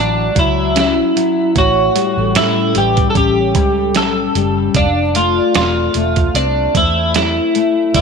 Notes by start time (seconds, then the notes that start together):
Already playing: A1 F#3 C#4
0.00 D4
0.35 C#2 F#3 C#5, kick, closed hi-hat
0.39 E4
0.75 C#4, snare, closed hi-hat
0.79 E4
1.16 F#3 E5, closed hi-hat
1.55 A1 A2 F#4 C#5, kick, closed hi-hat
1.95 G3, closed hi-hat
2.17 A1 A4
2.35 A2 C#4 E4 A4, snare, closed hi-hat
2.75 A1 G3 G4, closed hi-hat
2.97 kick, closed hi-hat
3.10 A4
3.15 A1 C#4 G4, kick, closed hi-hat
3.38 C#5
3.55 C#2 G3, kick, closed hi-hat
3.78 A4
3.95 B1 C#4 A4, snare, closed hi-hat
4.35 F#1 G3, closed hi-hat
4.74 F1 D4 F5, kick, closed hi-hat
5.15 A3 F4, closed hi-hat
5.38 D5
5.55 E1 C4 F4, snare, closed hi-hat
5.94 E1 A3 E5, closed hi-hat
6.16 kick, closed hi-hat
6.34 C2 C4 D4, closed hi-hat
6.75 E2 A3 E4 C5, kick, closed hi-hat
7.14 C4 E4, snare, closed hi-hat
7.54 A3 E5, closed hi-hat
7.94 G1 G2 F#4 D5, kick, closed hi-hat